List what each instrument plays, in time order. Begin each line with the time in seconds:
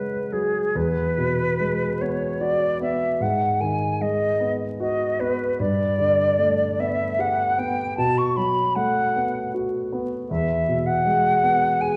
Already playing: grand piano F#2 C#3 F#3 G#3 F#4 F#5, flute B4
0.32 grand piano F#3, flute G#4
0.75 grand piano E2, flute B4
1.18 grand piano B2
1.60 grand piano G#3
2.01 grand piano B3, flute C#5
2.41 grand piano F#4, flute D5
2.81 grand piano B3, flute E5
3.20 grand piano G#2, flute F#5
3.60 grand piano D#3, flute G#5
4.01 grand piano G#3, flute D#5
4.40 grand piano B3
4.80 grand piano F#4, flute D#5
5.20 grand piano B3, flute B4
5.60 grand piano G2, flute D5
5.98 grand piano D3
6.39 grand piano A3
6.79 grand piano B3, flute E5
7.19 grand piano G4, flute F#5
7.58 grand piano B3, flute G5
7.97 grand piano B2, flute A5
8.18 flute C#6
8.37 grand piano F#3, flute B5
8.75 grand piano A3, flute F#5
9.16 grand piano B3
9.54 grand piano F#4
9.92 grand piano B3
10.30 grand piano E2, flute E5
10.68 grand piano B2
10.86 flute F#5
11.05 grand piano G#3
11.43 grand piano B3
11.81 grand piano G#4, flute G#5